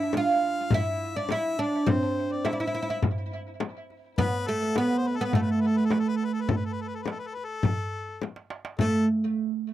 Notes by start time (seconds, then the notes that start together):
Already playing: E4 E5
0.00 darbuka ka
0.13 F5, darbuka tek, frame drum
0.17 F4
0.70 E4 E5, frame drum, darbuka dum
1.16 D4 D5, darbuka ka
1.29 E4 E5, darbuka tek, frame drum
1.59 D4 D5
1.86 C4 C5, frame drum, darbuka dum
2.02 darbuka ka
2.31 D5, darbuka ka
2.45 E4 E5, darbuka tek, frame drum
2.53 E4 D5
2.60 E4 E5
2.67 E4
2.75 E4
2.82 E4
2.90 E4
3.02 frame drum, darbuka dum
3.60 darbuka tek, frame drum
3.90 darbuka ka
4.18 B3 B4, frame drum, darbuka dum
4.34 darbuka ka
4.47 A3 A4
4.63 darbuka ka
4.76 B3 B4, darbuka tek, frame drum
4.98 C5
5.07 B4
5.17 A4
5.21 B3 B4
5.33 A3 A4, frame drum, darbuka dum
5.42 B4
5.51 A4
5.61 B4
5.67 A4
5.77 B4, darbuka ka
5.85 A4
5.90 B4, darbuka tek, frame drum
5.99 A4
6.08 B4
6.17 A4
6.21 darbuka ka
6.25 B4
6.33 A4
6.41 B4
6.49 A4, frame drum, darbuka dum
6.56 B4
6.64 A4, darbuka ka
6.73 B4
6.81 A4
6.88 B4
6.96 A4
7.03 B4, frame drum
7.08 A4, darbuka tek
7.19 B4, darbuka ka
7.27 A4
7.35 B4, darbuka ka
7.45 A4
7.63 frame drum, darbuka dum
8.09 darbuka ka
8.22 darbuka tek, frame drum
8.36 darbuka ka
8.50 darbuka tek
8.65 darbuka ka
8.79 A3 A4, frame drum, darbuka dum